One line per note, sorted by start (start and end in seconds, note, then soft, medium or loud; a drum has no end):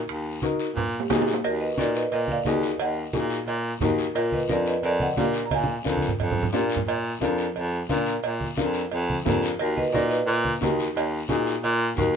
0.08 0.41 D#2 medium
0.08 high conga soft
0.08 high timbale medium
0.08 long guiro medium
0.42 0.66 D#4 medium
0.42 0.66 F#4 medium
0.42 0.66 A#4 loud
0.42 high conga medium
0.42 high timbale medium
0.42 short guiro medium
0.59 short guiro medium
0.75 1.03 A#2 loud
0.75 high conga soft
0.75 low conga medium
0.75 high timbale medium
0.75 long guiro medium
1.00 low timbale medium
1.10 1.37 A#2 medium
1.10 1.33 D#4 medium
1.10 1.33 F#4 medium
1.10 1.34 G#4 loud
1.10 high conga medium
1.10 low timbale loud
1.10 short guiro medium
1.22 low timbale medium
1.27 short guiro medium
1.33 low timbale medium
1.44 1.71 D#2 medium
1.44 1.52 F#4 medium
1.44 1.52 A#4 medium
1.44 cowbell loud
1.44 high conga soft
1.44 long guiro medium
1.61 1.76 B4 medium
1.61 1.77 D#5 medium
1.77 2.05 A#2 medium
1.77 2.01 D#4 medium
1.77 2.01 F#4 medium
1.77 2.01 A#4 medium
1.77 1.86 A#4 medium
1.77 1.86 D5 medium
1.77 high conga medium
1.77 short guiro medium
1.95 2.11 B4 medium
1.95 2.12 D#5 medium
1.95 short guiro medium
2.12 2.39 A#2 loud
2.12 2.20 A#4 medium
2.12 2.20 D#5 medium
2.12 cowbell medium
2.12 high conga soft
2.12 long guiro medium
2.28 2.45 D5 medium
2.28 high conga medium
2.32 2.46 F5 loud
2.45 2.72 D#2 loud
2.45 2.69 D#4 medium
2.45 2.70 F#4 medium
2.45 2.70 G#4 medium
2.45 2.78 A#4 medium
2.45 2.78 D#5 medium
2.45 high conga medium
2.45 low timbale medium
2.45 short guiro medium
2.63 short guiro medium
2.79 3.06 D#2 medium
2.79 3.44 D#5 medium
2.79 3.44 F#5 loud
2.79 cowbell loud
2.79 high conga soft
2.79 long guiro medium
3.13 3.40 A#2 loud
3.13 3.37 D#4 medium
3.13 3.38 F#4 medium
3.13 3.38 G#4 medium
3.13 high conga loud
3.13 short guiro medium
3.30 short guiro medium
3.46 3.74 A#2 loud
3.46 cowbell medium
3.46 high conga soft
3.46 long guiro medium
3.80 4.08 D#2 medium
3.80 4.05 D#4 loud
3.80 4.05 F#4 medium
3.80 4.05 A#4 loud
3.80 high conga medium
3.80 low conga medium
3.80 low timbale medium
3.80 short guiro medium
3.98 short guiro medium
4.14 4.42 A#2 medium
4.14 4.31 F4 medium
4.14 4.31 A#4 medium
4.14 cowbell loud
4.14 high conga soft
4.14 long guiro medium
4.32 4.49 B4 medium
4.32 4.49 D#5 medium
4.32 high conga medium
4.49 4.77 F2 medium
4.49 4.73 D4 medium
4.49 4.73 F4 medium
4.49 4.66 A#4 medium
4.49 4.74 A#4 medium
4.49 4.68 D5 medium
4.49 high conga medium
4.49 short guiro medium
4.66 4.83 B4 medium
4.66 4.83 D#5 medium
4.66 short guiro medium
4.83 5.10 F2 loud
4.83 5.00 A#4 medium
4.83 5.02 D5 medium
4.83 cowbell medium
4.83 high conga soft
4.83 long guiro medium
5.00 5.17 D#5 medium
5.00 5.17 F#5 loud
5.00 high conga medium
5.16 5.44 A#2 medium
5.16 5.41 D4 medium
5.16 5.41 F4 medium
5.16 5.41 A#4 medium
5.16 5.43 D5 medium
5.16 5.44 F5 medium
5.16 high conga medium
5.16 low timbale medium
5.16 short guiro medium
5.33 short guiro medium
5.46 5.52 A#5 medium
5.50 5.78 A#2 medium
5.50 6.16 F5 medium
5.50 cowbell loud
5.50 high conga loud
5.50 long guiro medium
5.55 6.17 G#5 loud
5.64 high conga medium
5.84 6.12 F2 loud
5.84 6.09 D4 medium
5.84 6.09 F4 medium
5.84 6.09 A#4 medium
5.84 high conga medium
5.84 short guiro medium
5.97 high conga loud
6.02 short guiro medium
6.08 low conga medium
6.19 6.47 F2 loud
6.19 cowbell medium
6.19 low conga medium
6.19 long guiro medium
6.32 low conga loud
6.43 low conga loud
6.53 6.80 A#2 medium
6.53 6.77 D4 medium
6.53 6.77 F4 medium
6.53 6.77 A#4 medium
6.53 low timbale medium
6.53 short guiro medium
6.70 short guiro medium
6.77 low conga medium
6.87 7.14 A#2 medium
6.87 cowbell loud
6.87 high conga soft
6.87 long guiro medium
7.20 7.48 F2 medium
7.20 7.45 D4 medium
7.20 7.45 F4 medium
7.20 7.45 A#4 loud
7.20 high conga medium
7.20 short guiro medium
7.38 short guiro medium
7.55 7.83 F2 loud
7.55 cowbell medium
7.55 high conga soft
7.55 long guiro medium
7.89 8.17 A#2 loud
7.89 8.13 D4 medium
7.89 8.13 F4 medium
7.89 8.14 A#4 loud
7.89 high conga medium
7.89 short guiro medium
8.06 short guiro medium
8.23 8.50 A#2 medium
8.23 cowbell loud
8.23 high conga soft
8.23 long guiro medium
8.41 high conga medium
8.57 8.85 F2 medium
8.57 8.81 D4 medium
8.57 8.81 F4 medium
8.57 8.82 A#4 medium
8.57 high conga loud
8.57 short guiro medium
8.74 short guiro medium
8.91 9.18 F2 loud
8.91 cowbell medium
8.91 high conga soft
8.91 long guiro medium
9.10 high conga medium
9.25 9.52 F2 medium
9.25 9.49 D4 medium
9.25 9.50 F4 medium
9.25 9.50 A#4 loud
9.25 high conga medium
9.25 low conga medium
9.25 low timbale medium
9.25 short guiro medium
9.43 short guiro medium
9.59 9.86 D#2 medium
9.59 9.77 F#4 medium
9.59 9.78 A#4 medium
9.59 cowbell loud
9.59 high conga soft
9.59 long guiro medium
9.77 9.89 B4 medium
9.77 9.89 D#5 loud
9.77 high conga medium
9.90 10.20 A#2 loud
9.90 10.17 D#4 medium
9.90 10.17 F#4 medium
9.90 10.09 D5 medium
9.90 9.94 D#5 medium
9.90 short guiro medium
9.94 10.18 A#4 medium
9.94 10.10 A#4 medium
9.94 high conga loud
10.09 11.94 B4 medium
10.09 11.93 D#5 medium
10.09 short guiro medium
10.26 10.54 A#2 loud
10.26 cowbell medium
10.26 high conga soft
10.26 long guiro medium
10.45 high conga medium
10.61 10.89 D#2 loud
10.61 10.85 D#4 medium
10.61 10.85 F#4 medium
10.61 10.85 A#4 loud
10.61 high conga medium
10.61 low timbale medium
10.61 short guiro medium
10.79 short guiro medium
10.96 11.23 D#2 loud
10.96 cowbell loud
10.96 high conga soft
10.96 long guiro medium
11.29 11.57 A#2 medium
11.29 11.53 D#4 medium
11.29 11.53 F#4 medium
11.29 11.54 G#4 medium
11.29 high conga loud
11.29 short guiro medium
11.46 short guiro medium
11.63 11.90 A#2 loud
11.63 cowbell medium
11.63 high conga soft
11.63 long guiro medium
11.97 12.16 D#2 medium
11.97 12.16 D#4 medium
11.97 12.16 F#4 medium
11.97 12.16 A#4 loud
11.97 high conga medium
11.97 low conga medium
11.97 short guiro medium